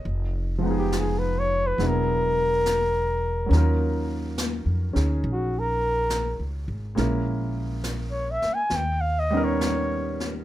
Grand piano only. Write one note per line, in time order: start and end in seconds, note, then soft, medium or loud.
0.00 0.23 D#5 medium
0.58 1.76 F3 medium
0.58 1.77 G#3 soft
0.63 1.78 B3 medium
0.63 1.79 D#4 medium
0.71 1.80 G#4 medium
1.78 3.45 F#3 medium
1.78 3.52 B3 soft
1.78 3.52 D4 soft
1.78 3.52 E4 soft
1.78 3.53 G#4 medium
3.46 6.95 F#3 medium
3.46 4.92 C#4 medium
3.52 4.93 D#4 medium
3.52 6.99 F4 medium
3.57 6.97 A#4 medium
4.93 6.96 C#4 soft
4.93 6.97 D#4 soft
4.93 6.97 G#4 medium
6.95 8.71 G#3 medium
6.95 8.71 A#3 soft
6.95 8.72 C#4 soft
6.95 8.72 E4 soft
6.99 8.73 A#4 medium
9.31 10.44 G3 medium
9.31 10.44 B3 medium
9.31 10.44 C#4 medium
9.31 10.44 D#4 medium
9.37 10.44 A#4 medium